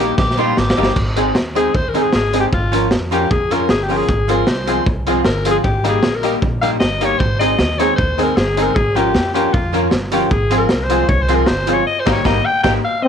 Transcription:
Already playing: A#1 G4
0.00 G3 A#3 D#4 G4
0.18 A#1 G4, kick, snare
0.31 snare
0.37 G3 A#3 D#4 F4 G4
0.57 G#1 G4, snare
0.70 snare
0.77 G1 G3 A#3 D#4 G4
0.83 snare
0.96 G#1, kick, crash
1.16 G#3 C4 D#4 G#4, closed hi-hat
1.35 D#2, muted hollow-body jazz guitar stroke, snare
1.55 G#3 C4 D#4 G#4, closed hi-hat
1.75 D#2 C5, kick
1.89 A#4
1.94 G#3 C4 D#4 G#4, closed hi-hat
2.02 G#4
2.12 G#1 G#4, snare
2.33 G#3 C4 D#4 G#4, closed hi-hat
2.40 G4
2.53 G#1 F4, kick
2.72 F3 A#3 C#4 F4 A#4, closed hi-hat
2.91 F2, muted hollow-body jazz guitar stroke, snare
3.11 F3 A#3 C#4 F4 G4 A#4, closed hi-hat
3.31 F2 G#4, kick
3.51 F3 A#3 C#4 F4 A#4, closed hi-hat
3.69 G1 G#4, snare
3.83 G4
3.89 F3 A#3 C#4 F4 A#4, open hi-hat
3.97 G#4
4.08 G#1, kick, hi-hat pedal
4.28 F3 G#3 C4 F4 G#4 A#4, closed hi-hat
4.47 C2 C5, muted hollow-body jazz guitar stroke, snare
4.67 F3 G#3 C4 F4 G#4, closed hi-hat
4.86 C2, kick
5.07 F3 G#3 C4 F4 G#4, closed hi-hat
5.25 G1 A#4, snare
5.45 F3 G#3 C4 F4 G#4, closed hi-hat
5.51 G#4
5.64 G#1 G4, kick
5.84 G3 A#3 D#4 G4, closed hi-hat
5.89 G#4
6.02 A#1, muted hollow-body jazz guitar stroke, snare
6.15 A#4
6.23 G3 A#3 D#4 G4, closed hi-hat
6.42 A#1, kick
6.61 G3 A#3 D#4 G4 F5, closed hi-hat
6.80 G1 D#5, snare
7.01 G3 A#3 D#4 G4 C#5, closed hi-hat
7.19 G#1 C5, kick
7.39 G#3 C4 D#4 G#4 D#5, closed hi-hat
7.59 D#2, snare
7.79 G#3 C4 D#4 G#4 C#5, closed hi-hat
7.96 D#2 C5, kick
8.18 G#3 C4 D#4 G#4, closed hi-hat
8.23 A#4
8.37 G1 G#4, snare
8.57 G#3 C4 D#4 G#4, closed hi-hat
8.63 A#4
8.75 G#1 G#4, kick
8.95 F3 A#3 C#4 F4 G4 A#4, closed hi-hat
9.14 F2, muted hollow-body jazz guitar stroke, snare
9.34 F3 A#3 C#4 F4 G4 A#4, closed hi-hat
9.54 F2 F4, kick
9.73 F3 A#3 C#4 F4 A#4, closed hi-hat
9.91 G1, snare
10.12 F3 A#3 C#4 F4 G4 A#4, closed hi-hat
10.31 G#1 G#4, kick
10.50 F3 G#3 C4 F4 G#4, closed hi-hat
10.58 A#4
10.69 C2, muted hollow-body jazz guitar stroke, snare
10.83 C5
10.89 F3 G#3 C4 F4 G#4, closed hi-hat
11.08 C2 C#5, kick
11.22 C5
11.28 F3 G#3 C4 F4 G#4, closed hi-hat
11.35 A#4
11.46 G1 C5, snare
11.66 F3 G#3 C4 F4 G#4, closed hi-hat
11.73 C#5
11.87 D#5
12.00 C5
12.06 G#1 G3 A#3 D#4 G4, kick, snare, crash
12.12 C#5
12.24 G#1 G3 A#3 D#4 G4 D#5, kick, snare
12.45 G5
12.63 G#1 G3 A#3 D#4 G4 G5, kick, snare
12.84 F5
13.03 C4 D#5

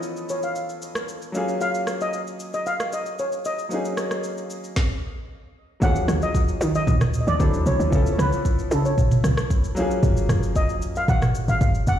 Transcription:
Already playing: E3 F3 B3 C#4 A4 D#5
0.03 shaker
0.16 shaker
0.29 C#5, shaker
0.43 F5, shaker
0.55 shaker
0.69 shaker
0.82 shaker
0.95 cross-stick, shaker
1.08 shaker
1.22 shaker
1.32 F#3 A#3 C#4 F4, shaker
1.37 G#4
1.48 shaker
1.61 F5, shaker
1.74 shaker
1.87 cross-stick, shaker
2.01 D#5, shaker
2.13 shaker
2.27 shaker
2.40 shaker
2.53 D#5, shaker
2.66 F5, shaker
2.80 cross-stick, shaker
2.92 D#5, shaker
3.06 shaker
3.19 C#5, shaker
3.32 shaker
3.45 D#5, shaker
3.59 shaker
3.69 F#3 A#3 C4 D#4, shaker
3.74 C#4 G#4
3.85 shaker
3.97 cross-stick, shaker
4.11 cross-stick, shaker
4.24 shaker
4.37 shaker
4.50 shaker
4.64 shaker
4.76 kick, snare
5.80 D#2 F3 F#3 A#3 C#4 F#5, kick, shaker
5.85 G#4
5.96 shaker
6.08 D#2, cross-stick, shaker
6.22 D#5, shaker
6.35 kick, shaker
6.48 shaker
6.61 D#3, shaker
6.75 D#5, shaker
6.87 D#2, kick, mid tom, shaker
7.01 cross-stick, mid tom, shaker
7.14 shaker
7.21 D#5
7.27 D#2 D5, shaker
7.39 D2 F#3 C4 D4 E4 A4, kick, shaker
7.54 shaker
7.66 C2 C#5, shaker
7.80 D#2, shaker
7.90 C#2 F3 B3 C#4 E4, kick, shaker
7.95 A4
8.06 shaker
8.13 C#5
8.19 C#2 B4, cross-stick, shaker
8.32 shaker
8.45 kick, shaker
8.59 shaker
8.71 C#3 A4, shaker
8.85 C#5, shaker
8.98 kick, mid tom, shaker
9.11 mid tom, shaker
9.24 C#2, cross-stick, shaker
9.37 cross-stick, shaker
9.50 kick, shaker
9.64 shaker
9.75 F3 F#3 A#3 C#4, shaker
9.80 G#4
9.91 shaker
10.03 F#1, kick, shaker
10.17 shaker
10.29 F#1, cross-stick, shaker
10.43 shaker
10.56 D#5, kick, shaker
10.69 shaker
10.82 F#2, shaker
10.96 F5, shaker
11.08 G#1 F#5, kick, mid tom, shaker
11.22 cross-stick, mid tom, shaker
11.35 shaker
11.48 G#1 F5, shaker
11.61 F#1, kick, shaker
11.75 shaker
11.87 F1 F#5, shaker

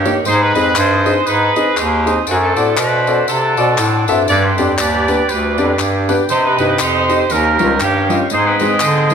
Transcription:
Already playing: G2 A#3 C#4 G4 A#4 D#5 G5 C#6
0.05 A#3 D#4 G4 C#5, tambourine
0.25 G#2 D#4 G#4 C5 D#5 D#6, tambourine
0.42 D#4 G#4 B4
0.55 F2 C4 D#4 G#4 D#5, tambourine
0.76 G2 D#4 G#4 C5, clap, tambourine
1.06 C4 D#4 G#4 D#5, tambourine
1.26 G#2 D#4 G#4 B4, tambourine
1.56 C4 D#4 G#4 D#5, tambourine
1.76 D#2 C4 D#4 G4, clap, tambourine
2.06 C4 D#4 G#4 C5, tambourine
2.27 F#2 A3 F#4 C5 F#5 A5 D6, tambourine
2.42 D4 A4
2.56 A2 C4 F#4 A4 D5, tambourine
2.77 B2 D4 B4, clap, tambourine
3.07 C4 F#4 A4 D5, tambourine
3.28 C3 C4 D4 A4, tambourine
3.57 B2 C4 F#4 A4 D5, tambourine
3.78 A2, clap, tambourine
4.08 G2 C4 F#4 A4 E5, tambourine
4.28 G2 G4 B4 D5 G5, tambourine
4.43 G4 C5
4.58 F2 B3 D4 G4 D5, tambourine
4.78 D#2 G4 B4 D5, clap, tambourine
5.08 B3 D4 G4 B4, tambourine
5.29 D2 D4 G4 B4, tambourine
5.58 F2 B3 D4 G4 D5, tambourine
5.79 G2, clap, tambourine
6.09 B3 D4 G4 B4, tambourine
6.29 C3 D#4 G4 C5 D#5 D#6, tambourine
6.45 D#4 G4 B4
6.58 G2 C4 D#4 G4 D#5, tambourine
6.79 F2 D#4 G4 C5, clap, tambourine
7.09 C4 D#4 G4 D#5, tambourine
7.30 D#2 D#3 C#4 G4 A#4 F5 C#6, tambourine
7.59 C#2 G3 C#4 F4 C5, tambourine
7.80 G2 A#3 C#4 G4, clap, tambourine
8.09 G3 C#4 F4 D#5, tambourine
8.30 G#2 G#4 C5 D#5 G#5 D#6, tambourine
8.46 C4 G#4 B4
8.59 G#3 C4 D#4 C5, tambourine
8.80 D3 G#4 C5, clap, tambourine
9.10 G#3 C4 D#4 C5, tambourine

